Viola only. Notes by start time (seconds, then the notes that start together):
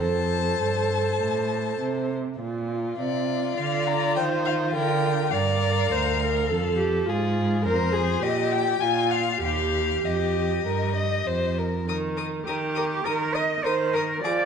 0.00 A4
3.57 D5
4.17 C5
4.75 A#4
5.33 D5
5.91 C5
6.22 A#4
6.49 A4
6.77 G4
7.06 F4
7.64 A#4
7.92 G#4
8.21 G4
8.83 F4
9.42 G4
11.87 D#3
12.46 D#3
13.04 D#3
13.65 D#3
14.24 F3